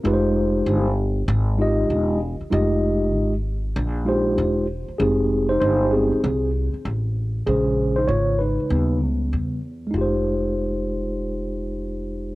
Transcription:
X:1
M:4/4
L:1/16
Q:"Swing 16ths" 1/4=97
K:Fm
V:1 name="Tine electric piano"
[A,EFG=Bc]4- [A,EFGBc] z4 z [A,EFGe]4 z2 | [G,A,EFGe]4- [G,A,EFGe] z4 z [A,EFGc]4 z2 | [CA]3 [Ec] [Ec]2 [CA]4 z6 | [DA]3 [Ec] [Fd]2 [E=B]4 z6 |
[A,EFGc]16 |]
V:2 name="Tine electric piano"
z16 | z16 | [A,EG]6 [A,EG]2 z8 | [D,A,c]8 [D,G,=B,]6 z2 |
z16 |]
V:3 name="Upright bass" clef=bass
F,,,4 G,,,4 A,,,4 =E,,,3 z | F,,,4 A,,,4 B,,,4 =E,,,3 z | F,,,4 G,,,3 z C,,3 z =A,,,4 | B,,,4 A,,,3 z E,,2 D,,2 =E,,4 |
F,,,16 |]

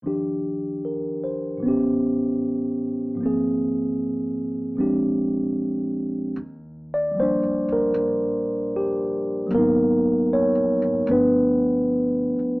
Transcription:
X:1
M:4/4
L:1/16
Q:"Swing" 1/4=76
K:Eb
V:1 name="Tine electric piano"
z4 B2 c3 z6 z | z16 | z2 d2 c2 B6 G4 | B4 _d4 =B6 z2 |]
V:2 name="Tine electric piano"
[E,,E,F,DG]8 [=A,,=E,=B,^CG]8 | [A,,F,B,CA]8 [B,,F,A,CDG]8 | z4 [F,G,B,D]12 | [_G,B,_CE]8 [F,=A,=B,D]8 |]
V:3 name="Upright bass" clef=bass
z16 | z16 | E,,4- (3E,,2 F,,2 D,,2 B,,,8 | A,,,4- (3A,,,2 B,,,2 A,,,2 G,,,6 z2 |]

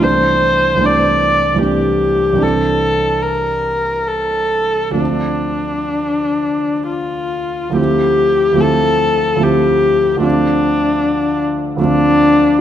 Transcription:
X:1
M:3/4
L:1/8
Q:1/4=73
K:Dm
V:1 name="Viola"
c2 d2 G2 | A2 B2 A2 | D4 F2 | G2 A2 G2 |
D3 z D2 |]
V:2 name="Grand piano"
[C,,E,A,CD]2 [C,,E,A,CD]2 [C,,E,A,CD]2 | [C,,E,CD]6 | [D,,F,A,CD]6 | [D,,F,A,CE]2 [D,,F,A,CE]2 [D,,F,A,CE]2 |
[D,,F,A,CF]4 [D,,F,A,CF]2 |]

